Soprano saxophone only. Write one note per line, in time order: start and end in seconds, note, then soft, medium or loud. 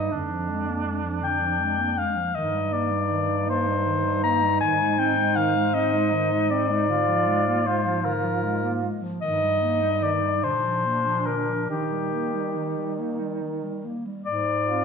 0.00 0.12 D#5 soft
1.24 2.00 G5 medium
1.98 2.37 F5 soft
2.35 2.75 D#5 medium
2.73 3.49 D5 medium
3.50 4.23 C5 medium
4.24 4.60 A#5 medium
4.61 5.00 G#5 medium
4.99 5.38 G5 medium
5.36 5.76 F5 medium
5.74 6.52 D#5 medium
6.51 7.68 D5 medium
7.67 8.07 C5 medium
8.05 8.83 A#4 soft
9.22 10.04 D#5 medium
10.03 10.45 D5 medium
10.43 11.28 C5 soft
11.26 11.69 A#4 soft
11.70 12.95 G4 soft
14.25 14.85 D5 medium